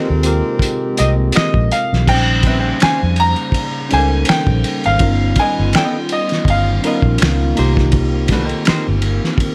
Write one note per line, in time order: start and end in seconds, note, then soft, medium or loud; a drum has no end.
0.00 2.05 C3 medium
0.00 1.67 D#3 medium
0.00 1.67 G#3 medium
0.00 2.05 G#3 medium
0.00 2.05 A#3 medium
0.00 0.23 C4 medium
0.00 1.67 C4 medium
0.00 0.24 F4 medium
0.00 0.26 G4 medium
0.00 2.05 G4 medium
0.00 2.10 A4 medium
0.00 0.27 A#4 loud
0.10 0.41 D#2 medium
0.23 1.35 C4 medium
0.23 1.36 F4 medium
0.23 1.36 G4 medium
0.23 1.37 A#4 loud
0.23 closed hi-hat medium
0.59 kick medium
0.59 closed hi-hat medium
0.97 1.30 C2 medium
0.97 1.13 C4 medium
0.97 1.13 G4 medium
0.97 1.13 A#4 medium
0.97 1.07 D#5 medium
0.97 1.14 D#5 medium
0.97 closed hi-hat medium
1.32 1.73 D#5 medium
1.32 closed hi-hat medium
1.36 finger snap loud
1.36 muted fingered electric bass stroke soft
1.36 snare loud
1.54 1.69 A#1 medium
1.54 kick loud
1.72 2.09 F5 medium
1.72 closed hi-hat medium
1.93 2.06 B1 medium
1.93 snare soft
2.06 2.71 A#1 loud
2.06 4.97 C#3 medium
2.06 4.97 G3 medium
2.06 3.19 G3 medium
2.06 4.97 A#3 medium
2.06 2.14 C4 medium
2.06 3.19 D#4 medium
2.06 4.97 C5 medium
2.06 3.20 C5 medium
2.06 2.84 G5 loud
2.06 kick loud
2.06 crash loud
2.12 3.21 C#4 medium
2.43 2.59 C4 medium
2.43 2.60 F#4 medium
2.43 2.60 B4 medium
2.43 2.60 E5 medium
2.43 kick loud
2.43 ride medium
2.59 2.79 C#4 medium
2.59 2.79 G4 medium
2.59 2.79 C5 medium
2.59 2.79 F5 medium
2.80 3.00 C#4 medium
2.80 3.00 G4 medium
2.80 3.01 C5 medium
2.80 3.01 F5 medium
2.80 3.20 G#5 loud
2.80 finger snap medium
2.80 muted fingered electric bass stroke soft
2.80 snare loud
2.80 ride medium
3.03 3.34 F2 loud
3.16 3.94 A#5 loud
3.16 ride medium
3.36 ride soft
3.52 kick medium
3.52 ride medium
3.89 4.23 C#2 medium
3.89 4.75 G3 medium
3.89 4.74 C#4 medium
3.89 4.06 C#4 medium
3.89 4.75 D#4 medium
3.89 4.06 G4 medium
3.89 3.99 A4 medium
3.89 4.06 C5 medium
3.89 ride medium
3.93 4.06 F5 medium
3.93 4.30 G#5 loud
3.99 4.79 A#4 medium
4.25 ride medium
4.29 4.86 G5 loud
4.29 finger snap loud
4.29 muted fingered electric bass stroke soft
4.29 snare loud
4.47 4.62 A#1 loud
4.47 kick loud
4.64 ride medium
4.84 5.00 G#1 loud
4.84 5.39 F5 medium
4.84 ride soft
4.99 5.32 G1 loud
4.99 9.55 D#3 medium
4.99 7.54 G3 medium
4.99 7.54 B3 medium
4.99 6.11 C#4 medium
4.99 6.12 D#4 medium
4.99 7.54 F4 medium
4.99 6.12 F4 medium
4.99 5.08 A#4 medium
4.99 kick loud
4.99 ride medium
5.09 6.16 B3 medium
5.36 5.72 B3 medium
5.36 5.72 F4 medium
5.36 5.76 G#5 loud
5.36 kick medium
5.36 ride medium
5.40 5.72 A#4 medium
5.40 5.73 D#5 medium
5.59 5.73 G1 loud
5.73 5.96 B3 medium
5.73 5.96 F4 medium
5.73 5.97 A#4 medium
5.73 6.12 G5 medium
5.73 finger snap loud
5.73 snare loud
5.73 ride medium
5.77 5.97 D#5 medium
6.09 6.49 D#5 medium
6.09 ride medium
6.29 snare soft
6.29 ride soft
6.45 6.78 G1 loud
6.45 kick medium
6.45 ride medium
6.50 7.54 F5 medium
6.82 6.98 B3 medium
6.82 7.56 C#4 medium
6.82 7.55 D#4 medium
6.82 7.57 F4 medium
6.82 6.99 F4 medium
6.82 7.57 A#4 medium
6.82 6.99 A#4 medium
6.82 ride medium
6.86 6.99 D#5 medium
7.02 7.18 A#1 medium
7.02 kick medium
7.18 7.52 C#2 loud
7.18 ride medium
7.22 finger snap loud
7.22 snare loud
7.55 8.52 C2 loud
7.55 8.74 A#3 medium
7.55 9.55 A#3 medium
7.55 7.71 A#3 medium
7.55 9.55 C4 medium
7.55 8.74 D#4 medium
7.55 7.71 D#4 medium
7.55 8.75 F4 medium
7.55 7.72 G4 medium
7.55 8.75 G4 loud
7.55 9.55 A#4 medium
7.55 7.72 C5 medium
7.55 ride medium
7.77 kick loud
7.77 snare soft
7.92 kick loud
7.92 ride medium
8.28 8.45 A3 medium
8.28 8.46 D4 medium
8.28 8.46 F#4 medium
8.28 kick medium
8.28 snare soft
8.28 ride medium
8.33 8.46 B4 medium
8.45 8.64 A#3 medium
8.45 8.65 D#4 medium
8.45 8.65 G4 medium
8.45 8.65 C5 medium
8.49 ride soft
8.65 8.85 A#3 medium
8.65 8.85 D#4 medium
8.65 8.86 G4 medium
8.65 8.86 C5 medium
8.65 finger snap medium
8.65 muted fingered electric bass stroke soft
8.65 snare loud
8.65 ride medium
8.88 9.19 G1 loud
9.02 ride medium
9.24 snare soft
9.38 kick medium
9.38 ride medium